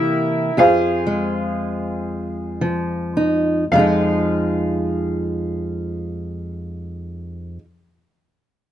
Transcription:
0.00 0.50 C3 medium
0.00 0.50 E3 medium
0.00 0.51 A#3 medium
0.00 0.51 E4 medium
0.00 0.53 E4 medium
0.00 0.51 G4 medium
0.00 0.53 A#4 medium
0.00 0.60 E5 medium
0.57 3.70 F2 medium
0.57 3.12 F4 medium
0.57 3.64 G#4 medium
0.57 3.12 G#4 medium
0.57 3.12 C5 medium
0.57 3.12 F5 medium
1.07 3.74 G#3 medium
2.61 3.64 F3 medium
3.17 3.64 D#4 medium
3.72 7.57 F2 medium
3.72 7.59 F3 medium
3.72 7.61 G#3 medium
3.72 7.53 F5 medium
3.78 7.63 D#4 medium
3.78 7.65 G#4 medium

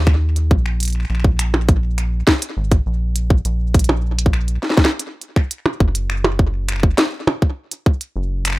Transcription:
0.00 0.52 D#2 medium
0.07 finger snap medium
0.07 kick loud
0.36 closed hi-hat soft
0.51 1.05 A#1 medium
0.51 kick loud
0.66 finger snap soft
0.80 closed hi-hat medium
0.83 closed hi-hat medium
0.85 closed hi-hat medium
0.88 closed hi-hat soft
0.90 closed hi-hat soft
0.93 finger snap soft
0.93 closed hi-hat soft
1.00 finger snap soft
1.05 finger snap soft
1.10 2.23 A#1 loud
1.10 finger snap soft
1.15 finger snap soft
1.20 finger snap soft
1.24 kick loud
1.39 finger snap medium
1.39 closed hi-hat medium
1.54 percussion blips medium
1.69 kick loud
1.69 closed hi-hat soft
1.98 finger snap soft
1.98 closed hi-hat medium
2.27 kick loud
2.27 snare loud
2.42 closed hi-hat medium
2.57 2.81 G#1 loud
2.72 kick loud
2.72 closed hi-hat soft
2.86 3.41 A#1 medium
3.16 closed hi-hat medium
3.30 kick loud
3.45 4.58 A#1 loud
3.45 closed hi-hat soft
3.74 kick loud
3.74 closed hi-hat medium
3.79 closed hi-hat medium
3.84 closed hi-hat soft
3.89 percussion blips loud
4.19 closed hi-hat medium
4.26 kick loud
4.33 finger snap soft
4.48 closed hi-hat soft
4.63 snare medium
4.70 snare medium
4.77 kick loud
4.77 snare medium
4.85 snare loud
4.99 closed hi-hat medium
5.22 closed hi-hat soft
5.36 finger snap soft
5.36 kick loud
5.51 closed hi-hat medium
5.66 percussion blips medium
5.80 6.94 F#1 loud
5.80 kick loud
5.95 closed hi-hat medium
6.10 finger snap medium
6.24 percussion blips medium
6.39 kick loud
6.69 finger snap soft
6.69 closed hi-hat medium
6.72 finger snap soft
6.76 finger snap soft
6.80 finger snap soft
6.80 kick loud
6.98 snare loud
6.98 closed hi-hat medium
7.27 percussion blips medium
7.42 kick loud
7.71 closed hi-hat medium
7.86 kick loud
8.01 closed hi-hat medium
8.16 8.59 F#1 loud
8.45 finger snap medium
8.45 closed hi-hat medium
8.47 finger snap medium
8.50 finger snap soft
8.52 finger snap soft
8.55 finger snap soft

